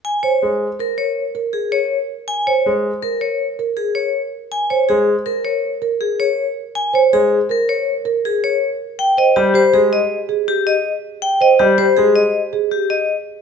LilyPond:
<<
  \new Staff \with { instrumentName = "Vibraphone" } { \time 6/4 \key bes \dorian \tempo 4 = 161 aes''8 des''8 r4 bes'8 des''8 r4 aes'8 des''8 r4 | aes''8 des''8 r4 bes'8 des''8 r4 aes'8 des''8 r4 | aes''8 des''8 aes'8 r8 bes'8 des''8 r4 aes'8 des''8 r4 | aes''8 des''8 aes'8 r8 bes'8 des''8 r4 aes'8 des''8 r4 |
g''8 ees''8 g'8 c''8 aes'8 ees''8 r4 g'8 ees''8 r4 | g''8 ees''8 g'8 c''8 aes'8 ees''8 r4 g'8 ees''8 r4 | }
  \new Staff \with { instrumentName = "Marimba" } { \time 6/4 \key bes \dorian r8 c''8 r4 bes'8 r4 bes'8 r2 | r8 c''8 r4 bes'8 r4 bes'8 r2 | r8 c''8 r4 bes'8 r4 bes'8 r2 | r8 c''8 r4 bes'8 r4 bes'8 r2 |
r8 c''8 r8 g'8 aes'8 r4 aes'8 r2 | r8 c''8 r8 g'8 aes'8 r4 aes'8 r2 | }
  \new Staff \with { instrumentName = "Grand piano" } { \clef bass \time 6/4 \key bes \dorian r4 aes8 r1 r8 | r4 aes8 r1 r8 | r4 aes8 r1 r8 | r4 aes8 r1 r8 |
r4 g8 r8 aes8 r2. r8 | r4 g8 r8 aes8 r2. r8 | }
>>